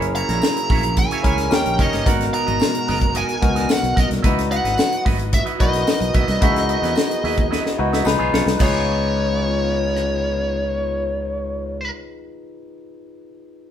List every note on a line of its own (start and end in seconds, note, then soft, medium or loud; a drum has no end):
0.00 0.21 F#1 loud
0.00 2.03 C#3 medium
0.00 1.50 F#3 medium
0.00 2.04 A#3 medium
0.00 0.77 C#4 medium
0.00 0.77 E4 medium
0.00 1.50 E4 medium
0.00 0.78 G#4 medium
0.00 0.78 A#4 loud
0.00 closed hi-hat medium
0.15 0.29 A#3 medium
0.15 0.29 E4 medium
0.15 0.28 F#4 medium
0.15 0.28 C#5 medium
0.15 1.00 A#5 loud
0.15 closed hi-hat medium
0.29 0.40 A#1 medium
0.29 0.42 A#3 medium
0.29 0.42 E4 medium
0.29 0.42 F#4 medium
0.29 0.43 C#5 medium
0.29 snare soft
0.29 closed hi-hat medium
0.42 muted clean electric guitar stroke soft
0.42 snare loud
0.42 tambourine medium
0.56 muted clean electric guitar stroke soft
0.56 closed hi-hat medium
0.70 1.03 A#1 medium
0.70 0.87 A#3 medium
0.70 0.84 E4 medium
0.70 0.83 F#4 medium
0.70 0.83 C#5 medium
0.70 kick loud
0.70 open hi-hat medium
0.83 muted clean electric guitar stroke medium
0.83 closed hi-hat soft
0.97 1.53 G#5 loud
0.97 muted clean electric guitar stroke soft
0.97 kick medium
0.97 closed hi-hat medium
1.11 1.24 A#3 medium
1.11 1.25 E4 medium
1.11 1.25 F#4 medium
1.11 1.25 C#5 medium
1.11 closed hi-hat medium
1.23 1.47 C#2 medium
1.23 1.39 A#3 medium
1.23 1.49 C#4 medium
1.23 1.51 E4 medium
1.23 1.38 E4 medium
1.23 1.38 F#4 medium
1.23 1.52 G#4 medium
1.23 1.50 A#4 medium
1.23 1.38 C#5 medium
1.23 kick medium
1.23 closed hi-hat medium
1.38 muted clean electric guitar stroke soft
1.38 snare soft
1.38 closed hi-hat medium
1.50 1.63 D#2 loud
1.50 2.06 G3 medium
1.50 1.96 C#4 medium
1.50 1.96 D#4 medium
1.50 2.06 D#4 medium
1.50 1.96 G4 medium
1.50 1.97 A#4 medium
1.50 1.81 G5 loud
1.50 muted clean electric guitar stroke soft
1.50 snare loud
1.50 tambourine medium
1.65 1.77 A#1 medium
1.65 muted clean electric guitar stroke soft
1.65 closed hi-hat medium
1.79 1.90 F#1 loud
1.79 1.93 A#3 medium
1.79 1.92 D#4 medium
1.79 1.92 G4 medium
1.79 1.92 C#5 loud
1.79 2.05 D#5 medium
1.79 kick medium
1.79 closed hi-hat medium
1.93 2.04 G1 medium
1.93 2.06 A#3 medium
1.93 2.06 D#4 medium
1.93 2.07 G4 medium
1.93 2.06 C#5 medium
1.93 snare soft
1.93 closed hi-hat soft
2.05 2.29 G#1 loud
2.05 4.23 B2 medium
2.05 4.22 G#3 medium
2.05 2.96 B3 medium
2.05 2.24 B3 medium
2.05 2.96 D#4 medium
2.05 2.96 F#4 medium
2.05 4.22 F#4 medium
2.05 2.24 F#4 medium
2.05 2.97 A#4 medium
2.05 4.22 A#4 medium
2.05 2.24 A#4 loud
2.05 2.25 F#5 medium
2.05 kick loud
2.05 closed hi-hat loud
2.20 snare soft
2.20 closed hi-hat medium
2.33 2.47 B3 soft
2.33 2.47 F#4 medium
2.33 2.46 A#4 medium
2.33 2.45 D#5 medium
2.33 3.18 A#5 loud
2.33 closed hi-hat medium
2.47 2.59 G#1 loud
2.47 2.59 B3 medium
2.47 2.60 F#4 medium
2.47 2.60 A#4 medium
2.47 2.60 D#5 medium
2.47 closed hi-hat soft
2.59 muted clean electric guitar stroke medium
2.59 snare loud
2.59 tambourine medium
2.74 muted clean electric guitar stroke soft
2.74 closed hi-hat medium
2.87 3.22 F#1 loud
2.87 3.05 B3 medium
2.87 3.00 F#4 medium
2.87 3.00 A#4 loud
2.87 2.99 D#5 loud
2.87 open hi-hat medium
3.00 muted clean electric guitar stroke soft
3.00 kick medium
3.00 closed hi-hat medium
3.14 3.32 B3 medium
3.14 3.28 F#4 medium
3.14 3.27 A#4 medium
3.14 3.26 D#5 loud
3.14 3.72 G#5 medium
3.14 closed hi-hat loud
3.28 muted clean electric guitar stroke soft
3.28 closed hi-hat medium
3.41 3.65 C#2 loud
3.41 4.10 B3 medium
3.41 4.10 D#4 medium
3.41 4.10 F#4 medium
3.41 4.10 A#4 medium
3.41 muted clean electric guitar stroke soft
3.41 kick medium
3.41 closed hi-hat medium
3.55 3.67 B3 medium
3.55 3.68 F#4 medium
3.55 3.68 A#4 medium
3.55 3.68 D#5 medium
3.55 snare soft
3.55 closed hi-hat medium
3.69 3.99 F#5 loud
3.69 snare loud
3.69 tambourine loud
3.82 3.94 B1 loud
3.82 muted clean electric guitar stroke medium
3.82 closed hi-hat medium
3.95 4.08 B1 medium
3.95 4.14 B3 medium
3.95 4.10 F#4 medium
3.95 4.09 A#4 medium
3.95 4.08 D#5 medium
3.95 kick medium
3.95 closed hi-hat medium
4.00 4.07 D#5 medium
4.09 4.22 C2 medium
4.09 muted clean electric guitar stroke soft
4.09 snare soft
4.09 closed hi-hat medium
4.22 4.57 C#2 loud
4.22 8.02 F#3 medium
4.22 8.56 B3 medium
4.22 5.15 D#4 medium
4.22 4.41 E4 loud
4.22 5.15 E4 medium
4.22 4.41 F#4 medium
4.22 6.41 F#4 medium
4.22 5.15 F#4 medium
4.22 4.41 B4 loud
4.22 5.16 B4 medium
4.22 4.42 D#5 loud
4.22 8.02 D#5 medium
4.22 kick loud
4.22 closed hi-hat loud
4.38 snare soft
4.38 closed hi-hat medium
4.50 4.65 E4 medium
4.50 4.64 F#4 medium
4.50 4.64 B4 medium
4.50 4.63 D#5 medium
4.50 5.02 F#5 loud
4.50 closed hi-hat medium
4.64 4.76 G#1 medium
4.64 4.77 E4 medium
4.64 4.77 F#4 medium
4.64 4.77 B4 medium
4.64 4.77 D#5 medium
4.64 snare soft
4.64 closed hi-hat medium
4.77 muted clean electric guitar stroke medium
4.77 snare loud
4.77 tambourine medium
4.91 muted clean electric guitar stroke soft
4.91 closed hi-hat medium
5.04 5.39 G#1 loud
5.04 5.23 E4 medium
5.04 5.19 F#4 medium
5.04 5.18 B4 medium
5.04 5.17 D#5 medium
5.04 kick loud
5.04 open hi-hat medium
5.19 muted clean electric guitar stroke soft
5.19 closed hi-hat medium
5.32 5.41 E5 loud
5.32 muted clean electric guitar stroke soft
5.32 kick medium
5.32 closed hi-hat loud
5.45 5.58 E4 medium
5.45 5.58 F#4 medium
5.45 5.59 B4 medium
5.45 5.59 D#5 medium
5.45 closed hi-hat medium
5.59 5.83 B1 medium
5.59 6.28 D#4 medium
5.59 5.73 E4 medium
5.59 6.28 E4 medium
5.59 5.73 F#4 medium
5.59 6.29 F#4 medium
5.59 5.67 A#4 medium
5.59 5.72 B4 medium
5.59 5.72 D#5 medium
5.59 8.02 D#5 medium
5.59 kick medium
5.59 closed hi-hat medium
5.68 6.32 B4 medium
5.73 muted clean electric guitar stroke soft
5.73 snare soft
5.73 closed hi-hat medium
5.87 muted clean electric guitar stroke soft
5.87 snare loud
5.87 tambourine loud
6.00 6.12 B1 medium
6.00 muted clean electric guitar stroke soft
6.00 closed hi-hat medium
6.13 6.26 B1 medium
6.13 6.28 E4 medium
6.13 6.28 F#4 medium
6.13 6.27 B4 loud
6.13 6.26 D#5 medium
6.13 kick medium
6.13 closed hi-hat medium
6.27 6.39 C2 loud
6.27 6.40 E4 medium
6.27 6.40 F#4 medium
6.27 6.41 B4 medium
6.27 6.42 D#5 medium
6.27 snare soft
6.27 closed hi-hat medium
6.41 6.76 C#2 loud
6.41 7.32 D#4 medium
6.41 6.59 E4 medium
6.41 7.32 E4 medium
6.41 6.59 F#4 medium
6.41 7.33 F#4 medium
6.41 7.33 G#4 medium
6.41 8.05 G#4 medium
6.41 6.60 B4 medium
6.41 6.60 E5 loud
6.41 kick loud
6.41 closed hi-hat loud
6.56 snare soft
6.56 closed hi-hat medium
6.69 6.82 E4 medium
6.69 6.82 F#4 medium
6.69 6.82 B4 medium
6.69 6.81 D#5 medium
6.69 closed hi-hat medium
6.82 6.94 E2 medium
6.82 6.95 E4 medium
6.82 6.95 F#4 medium
6.82 6.96 B4 medium
6.82 6.96 D#5 medium
6.82 snare soft
6.82 closed hi-hat soft
6.95 muted clean electric guitar stroke soft
6.95 snare loud
6.95 tambourine medium
7.10 muted clean electric guitar stroke soft
7.10 closed hi-hat medium
7.23 7.57 D#2 loud
7.23 7.41 E4 medium
7.23 7.37 F#4 medium
7.23 7.37 B4 medium
7.23 7.36 D#5 medium
7.23 open hi-hat medium
7.38 muted clean electric guitar stroke medium
7.38 kick medium
7.38 closed hi-hat soft
7.51 7.68 E4 medium
7.51 7.64 F#4 medium
7.51 7.64 B4 medium
7.51 7.63 D#5 loud
7.51 snare medium
7.64 muted clean electric guitar stroke medium
7.64 snare medium
7.78 8.01 C#2 medium
7.78 8.04 D#4 medium
7.78 8.06 E4 medium
7.78 8.06 F#4 medium
7.78 8.06 B4 medium
7.78 muted clean electric guitar stroke soft
7.92 8.05 E4 medium
7.92 8.05 F#4 medium
7.92 8.06 B4 medium
7.92 8.06 D#5 medium
7.92 snare medium
8.05 8.17 C#2 loud
8.05 8.59 C#3 medium
8.05 8.58 G#3 medium
8.05 8.50 D#4 medium
8.05 8.51 F4 medium
8.05 8.59 F4 medium
8.05 8.51 G#4 medium
8.05 8.51 B4 loud
8.05 snare medium
8.05 tambourine medium
8.18 8.31 B1 medium
8.18 8.31 B3 medium
8.18 8.32 F4 medium
8.18 8.32 G#4 medium
8.18 8.33 C#5 loud
8.32 8.44 B1 medium
8.32 8.46 B3 medium
8.32 8.46 F4 medium
8.32 8.45 G#4 medium
8.32 8.45 C#5 medium
8.32 snare loud
8.46 8.57 C2 medium
8.46 muted clean electric guitar stroke soft
8.46 snare medium
8.58 11.89 C#2 loud
8.58 11.89 C#3 medium
8.58 11.89 G#3 medium
8.58 12.08 B3 medium
8.58 11.90 B3 medium
8.58 11.88 D#4 medium
8.58 12.09 F4 medium
8.58 11.89 F4 medium
8.58 12.11 G#4 loud
8.58 11.90 C#5 medium
8.58 kick loud
8.58 crash medium
8.58 tambourine medium
8.62 11.91 G#4 medium
8.62 11.93 B4 medium
8.62 12.13 C#5 medium
9.97 cross-stick medium